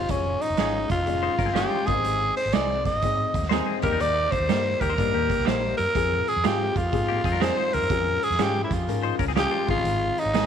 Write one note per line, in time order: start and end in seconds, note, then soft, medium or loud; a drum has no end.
0.00 0.07 F#1 medium
0.00 0.12 F4 medium
0.09 0.34 F1 medium
0.09 0.44 G#3 medium
0.09 0.45 C#4 medium
0.09 0.42 C#4 medium
0.09 0.45 F4 medium
0.09 0.45 C#5 medium
0.09 kick medium
0.09 closed hi-hat medium
0.41 0.90 D#4 medium
0.41 closed hi-hat medium
0.50 0.56 F1 medium
0.57 0.83 G#1 medium
0.57 0.72 G#3 medium
0.57 0.94 G#3 medium
0.57 0.72 C#4 medium
0.57 0.94 C#4 medium
0.57 0.72 F4 medium
0.57 0.94 F4 medium
0.57 0.72 G#4 medium
0.57 0.94 C#5 medium
0.57 snare loud
0.57 closed hi-hat medium
0.90 1.27 F1 medium
0.90 1.57 F4 medium
0.90 kick medium
0.90 closed hi-hat medium
1.06 1.42 G#3 medium
1.06 1.42 C#4 medium
1.06 1.43 F4 medium
1.06 1.43 D#5 medium
1.06 closed hi-hat medium
1.23 1.38 D#4 medium
1.23 1.38 C5 medium
1.38 1.64 G1 medium
1.38 1.45 C#4 medium
1.38 1.47 A#4 medium
1.38 kick medium
1.38 closed hi-hat medium
1.46 1.55 C4 medium
1.46 1.53 G#4 medium
1.46 snare soft
1.54 1.69 G#3 medium
1.54 1.85 G#3 medium
1.54 1.70 A#3 medium
1.54 1.69 C#4 medium
1.54 1.88 C#4 medium
1.54 1.70 F4 medium
1.54 1.89 F4 medium
1.54 1.70 G4 medium
1.54 1.88 G4 medium
1.54 1.70 G#4 medium
1.54 1.89 C#5 medium
1.54 snare loud
1.54 closed hi-hat medium
1.70 1.95 G#3 medium
1.70 1.94 F4 medium
1.87 1.95 G#1 medium
1.87 2.43 G#3 medium
1.87 2.43 C4 medium
1.87 2.44 D#4 medium
1.87 2.36 G#4 loud
1.87 1.92 A#4 medium
1.87 kick medium
1.87 closed hi-hat medium
1.94 2.04 A1 medium
1.94 2.47 C5 medium
2.04 2.30 G#1 loud
2.04 closed hi-hat medium
2.37 2.55 C5 loud
2.37 closed hi-hat medium
2.45 2.52 G#1 medium
2.45 closed hi-hat soft
2.52 2.85 C2 medium
2.52 2.67 G#3 medium
2.52 2.89 G#3 medium
2.52 2.67 C4 medium
2.52 2.89 C4 medium
2.52 2.67 D#4 medium
2.52 2.89 D#4 medium
2.52 2.68 G#4 medium
2.52 2.89 C5 medium
2.52 2.85 D5 medium
2.52 snare loud
2.52 closed hi-hat medium
2.85 3.46 D#5 medium
2.85 kick medium
2.85 snare soft
2.85 closed hi-hat medium
2.95 3.01 G#1 medium
3.02 3.27 G#2 medium
3.02 3.38 G#3 medium
3.02 3.38 C4 medium
3.02 3.38 D#4 medium
3.02 3.39 D#5 medium
3.02 kick medium
3.02 closed hi-hat medium
3.34 3.59 D#2 medium
3.34 kick medium
3.34 closed hi-hat medium
3.43 snare soft
3.49 3.65 G#3 medium
3.49 3.84 G#3 medium
3.49 3.65 C4 medium
3.49 3.85 C4 medium
3.49 3.66 D#4 medium
3.49 3.65 D#4 medium
3.49 3.66 G#4 medium
3.49 3.66 C5 medium
3.49 snare loud
3.49 closed hi-hat medium
3.54 3.84 D#4 medium
3.54 3.85 C5 medium
3.66 3.83 C4 medium
3.66 3.82 G#4 medium
3.82 3.90 D#2 loud
3.82 4.39 G3 medium
3.82 3.91 A#3 medium
3.82 4.40 A#3 medium
3.82 4.40 D#4 medium
3.82 3.91 G4 medium
3.82 4.03 A#4 medium
3.82 4.40 A#4 medium
3.82 kick medium
3.82 closed hi-hat medium
3.92 3.98 E2 medium
3.92 4.62 G3 medium
3.92 4.62 D#4 medium
4.00 4.25 D#2 loud
4.00 4.33 D5 loud
4.00 closed hi-hat medium
4.31 4.82 C5 loud
4.31 kick medium
4.31 closed hi-hat medium
4.40 4.47 D#2 medium
4.49 4.74 G2 medium
4.49 4.63 G3 medium
4.49 4.84 G3 medium
4.49 4.63 A#3 medium
4.49 4.84 A#3 medium
4.49 4.63 D#4 medium
4.49 4.85 D#4 medium
4.49 4.63 G4 medium
4.49 4.85 A#4 medium
4.49 snare loud
4.49 closed hi-hat medium
4.81 4.94 D#2 medium
4.81 4.90 A#3 medium
4.81 4.89 G4 medium
4.81 5.48 A#4 loud
4.81 kick loud
4.81 closed hi-hat medium
4.89 4.98 D#4 medium
4.89 4.97 C5 medium
4.97 5.10 G2 medium
4.97 5.33 G3 medium
4.97 5.33 A#3 medium
4.97 5.13 D4 medium
4.97 5.34 D#4 medium
4.97 5.13 A#4 medium
4.97 5.34 A#4 medium
4.97 kick medium
4.97 closed hi-hat medium
5.14 5.26 D#2 medium
5.14 5.84 A#3 medium
5.14 5.84 G4 medium
5.30 kick medium
5.30 closed hi-hat medium
5.39 5.45 C2 medium
5.39 snare soft
5.45 5.72 A#1 medium
5.45 5.59 G3 medium
5.45 5.82 G3 medium
5.45 5.60 A#3 medium
5.45 5.82 A#3 medium
5.45 5.60 D#4 medium
5.45 5.82 D#4 medium
5.45 5.60 G4 medium
5.45 5.82 A#4 medium
5.45 5.77 C5 medium
5.45 snare loud
5.45 closed hi-hat medium
5.77 5.85 F#2 medium
5.77 6.29 A#4 loud
5.77 closed hi-hat medium
5.95 6.20 F2 medium
5.95 6.30 F3 medium
5.95 6.30 G#3 medium
5.95 6.31 C4 medium
5.95 6.31 G#4 medium
5.95 kick loud
5.95 closed hi-hat medium
6.28 6.47 G#4 medium
6.28 closed hi-hat medium
6.36 6.43 F2 medium
6.43 6.69 G#2 medium
6.43 6.79 F3 medium
6.43 6.58 G#3 medium
6.43 6.79 G#3 medium
6.43 6.58 C4 medium
6.43 6.79 C4 medium
6.43 6.79 F4 medium
6.43 6.58 F4 medium
6.43 6.78 G4 medium
6.43 6.58 G#4 loud
6.43 snare loud
6.43 closed hi-hat medium
6.76 6.89 F2 medium
6.76 7.44 F4 medium
6.76 kick medium
6.76 closed hi-hat medium
6.92 7.17 G#2 medium
6.92 7.27 F3 medium
6.92 7.27 G#3 medium
6.92 7.28 C4 medium
6.92 7.28 G#4 medium
6.92 kick medium
6.92 closed hi-hat medium
7.08 7.25 A#3 medium
7.08 7.24 G4 medium
7.24 7.49 F2 medium
7.24 7.33 C4 medium
7.24 7.32 G#4 medium
7.24 kick medium
7.24 closed hi-hat medium
7.32 7.56 D4 medium
7.32 7.56 A#4 medium
7.32 snare soft
7.41 7.76 F3 medium
7.41 7.55 G#3 medium
7.41 7.76 G#3 medium
7.41 7.55 C4 medium
7.41 7.76 C4 medium
7.41 7.55 F4 medium
7.41 7.55 G#4 medium
7.41 7.77 G#4 medium
7.41 7.75 C5 medium
7.41 snare loud
7.41 closed hi-hat medium
7.57 7.89 D#4 medium
7.57 7.89 C5 medium
7.73 7.80 D2 loud
7.73 8.25 A#4 medium
7.73 closed hi-hat medium
7.82 7.89 F#2 medium
7.82 closed hi-hat medium
7.90 8.15 F2 medium
7.90 8.25 F3 medium
7.90 8.25 G#3 medium
7.90 8.25 C#4 medium
7.90 8.26 G#4 medium
7.90 kick loud
7.90 closed hi-hat medium
8.23 8.44 G#4 medium
8.23 closed hi-hat medium
8.30 8.37 F2 medium
8.30 snare soft
8.30 closed hi-hat soft
8.38 8.64 G#2 medium
8.38 8.73 F3 medium
8.38 8.74 G#3 medium
8.38 8.53 G#3 medium
8.38 8.74 C#4 medium
8.38 8.53 C#4 medium
8.38 8.53 F4 medium
8.38 8.74 G#4 medium
8.38 8.53 G#4 medium
8.38 snare loud
8.38 closed hi-hat medium
8.42 8.63 G4 medium
8.64 8.75 E4 medium
8.71 8.84 F2 medium
8.71 9.18 F4 medium
8.71 kick medium
8.71 closed hi-hat medium
8.87 9.12 G#2 loud
8.87 9.23 F3 medium
8.87 9.23 G#3 medium
8.87 9.23 C#4 medium
8.87 9.23 A#4 medium
8.87 closed hi-hat medium
9.03 9.19 D#4 medium
9.03 9.19 C5 medium
9.19 9.45 C#2 medium
9.19 9.28 C#4 medium
9.19 9.27 A#4 medium
9.19 kick medium
9.19 closed hi-hat medium
9.28 9.36 C4 medium
9.28 9.35 G#4 medium
9.28 snare soft
9.36 9.68 F3 medium
9.36 9.68 G#3 medium
9.36 9.50 G#3 medium
9.36 9.52 A#3 medium
9.36 9.68 C#4 medium
9.36 9.50 C#4 medium
9.36 9.50 F4 medium
9.36 9.51 G4 medium
9.36 9.68 G4 loud
9.36 9.69 G#4 medium
9.36 9.50 G#4 medium
9.36 snare loud
9.36 closed hi-hat medium
9.51 9.75 G#3 medium
9.51 9.75 F4 medium
9.68 9.75 G#1 loud
9.68 10.24 D#3 medium
9.68 10.24 G#3 medium
9.68 10.24 C4 medium
9.68 10.21 F4 loud
9.68 10.25 G#4 medium
9.68 kick medium
9.68 open hi-hat medium
9.77 9.83 A1 medium
9.85 10.09 G#1 loud
9.85 closed hi-hat medium
10.18 10.46 D#4 loud
10.18 closed hi-hat medium
10.25 10.44 G#1 medium
10.34 10.46 D#3 medium
10.34 10.46 G#3 medium
10.34 10.46 C4 medium
10.34 10.46 D#4 medium
10.34 10.46 G#4 medium
10.34 snare loud
10.34 closed hi-hat medium